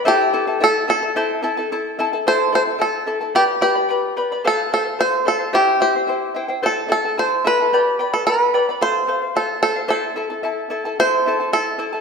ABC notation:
X:1
M:2/4
L:1/16
Q:1/4=110
K:Am
V:1 name="Charango"
[EAcea]2 [EAea] [EAa] [EAea]2 [EAea] [EAa] | [EAcea]2 [EAea] [EAa] [EAea]2 [EAea] [EAa] | [EAcea]2 [EAea] [EAa] [EAea]2 [EAea] [EAa] | [GBdgb]2 [Bdgb] [Bdb] [Bdgb]2 [Bdgb] [Bdb] |
[Acf]2 [Acf] [cf] [Acf]2 [Acf] [cf] | [EGceg]2 [Eceg] [Ecg] [Eceg]2 [Eceg] [Ecg] | [EAcea]2 [EAea] [EAa] [EAea]2 [EAea] [EAa] | [GBdgb]2 [Bdgb] [Bdb] [Bdgb]2 [Bdgb] [Bdb] |
[Acf]2 [Acf] [cf] [Acf]2 [Acf] [cf] | [EAcea]2 [EAea] [EAa] [EAea]2 [EAea] [EAa] | [EAcea]2 [EAea] [EAa] [EAea]2 [EAea] [EAa] |]
V:2 name="Five-string banjo"
G4 A2 A2- | A4 z4 | c2 c2 A4 | G2 G4 z2 |
A2 A2 c2 A2 | G2 G4 z2 | A2 A2 c2 B2- | B3 A B3 z |
c4 A2 A2 | A6 z2 | c4 A4 |]